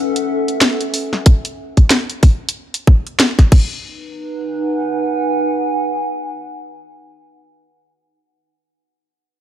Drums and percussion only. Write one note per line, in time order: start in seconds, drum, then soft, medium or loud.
0.16 closed hi-hat medium
0.48 closed hi-hat soft
0.61 snare loud
0.61 closed hi-hat medium
0.81 closed hi-hat soft
0.94 open hi-hat medium
1.13 snare soft
1.26 kick loud
1.26 closed hi-hat medium
1.45 closed hi-hat soft
1.77 kick medium
1.77 closed hi-hat soft
1.90 snare loud
1.90 closed hi-hat medium
2.10 closed hi-hat soft
2.23 kick loud
2.23 open hi-hat medium
2.49 closed hi-hat medium
2.74 closed hi-hat medium
2.87 kick loud
3.07 closed hi-hat soft
3.20 snare loud
3.20 closed hi-hat medium
3.39 kick medium
3.39 snare soft
3.39 closed hi-hat soft
3.52 kick loud
3.52 crash medium